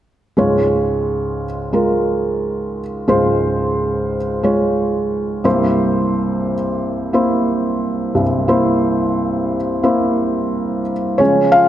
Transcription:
0.37 C#2 G#2 G#3 F4 C#5
1.73 G#3 F4 A#4
3.08 C#2 G#2 G#3 F4 C5
4.43 G#3 F4 C#5
5.44 C2 G2 A#3 E4 C5
7.13 A#3 E4 C5
8.15 C2 G2
8.48 A#3 E4 C5
9.83 A#3 E4 C5
11.18 C#3 F3 G#3 C#4 C#5
11.52 F4 F5

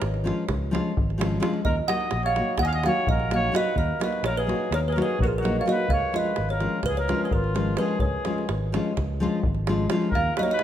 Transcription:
0.02 G#1, davul high
0.14 davul high
0.24 F3 G#3 C#4 F4, davul high
0.49 C#2, davul high, davul low
0.71 F3 G#3 C#4 F4, davul high
0.97 G#1, davul low
1.10 davul high
1.18 F3 G#3 C#4 F4, davul high
1.40 F3 G#3 C#4 F4, davul high
1.54 davul high
1.65 D#2 A#4 D#5, davul low
1.88 F#3 A#3 D#4 F#4 D#5 F#5, davul high
2.01 davul high
2.11 A#1, davul high
2.23 C#5 F5, davul high
2.36 F#3 A#3 D#4 F#4, davul high
2.58 D#2 F#5, davul high, davul low
2.62 D#5 G#5
2.67 F5
2.73 D#5 F#5
2.83 F#3 A#3 D#4 F#4 C#5 F5, davul high
3.07 A#1 A#4 D#5, davul low
3.20 davul high
3.31 F#3 A#3 D#4 F#4 F5, davul high
3.35 C#5
3.52 F#3 A#3 D#4 F#4, davul high
3.56 B4 D#5
3.76 D#2 A#4 D#5, davul low
4.00 F#3 A#3 D#4 F#4 B4 D#5, davul high
4.13 davul high
4.23 A#1 A#4 C#5, davul high
4.36 G#4 B4, davul high
4.47 F#3 A#3 D#4 F#4, davul high
4.71 D#2 A#4 C#5, davul high
4.88 G#4 A#4 B4
4.92 F#3 A#3 C#5
4.97 D#4 F#4, davul high
5.02 G#4 B4
5.19 A#1 F#4, davul low
5.24 F4 G#4 A#4
5.33 davul high
5.38 F#4 A#4
5.42 F#3 A#3 D#4 F#4, davul high
5.59 C#5 F5
5.66 F#3 A#3 D#4 F#4 D#5, davul high
5.71 B4
5.80 davul high
5.88 C#2 F5, davul low
5.93 C#5
6.12 F3 G#3 C#4 F4 D#5, davul high
6.17 B4
6.26 davul high
6.36 G#1, davul high
6.49 A#4 C#5, davul high
6.60 F3 G#3 C#4 F4, davul high
6.83 C#2 B4, davul high, davul low
6.88 G#4
6.97 A#4 C#5
7.08 F3 G#3 C#4 F4, davul high
7.24 G#4 B4
7.31 G#1 F4 A#4, davul low
7.44 davul high
7.54 F3 G#3 C#4 F4, davul high
7.77 F3 G#3 C#4 F4 G#4 B4, davul high
7.88 davul high
7.99 C#2 G#4 C#5, davul low
8.25 F3 G#3 C#4 F4, davul high
8.38 davul high
8.49 G#1, davul high
8.72 F3 G#3 C#4 F4, davul high
8.97 C#2, davul high, davul low
9.20 F3 G#3 C#4 F4
9.43 G#1, davul low
9.55 davul high
9.67 F3 G#3 C#4 F4, davul high
9.90 F3 G#3 C#4 F4, davul high
10.02 davul high
10.11 D#2 A#4, davul low
10.15 F5
10.36 F#3 A#3 D#4 F#4 B4 D#5, davul high
10.43 A#4 C#5
10.48 D#5, davul high
10.52 B4
10.59 davul high

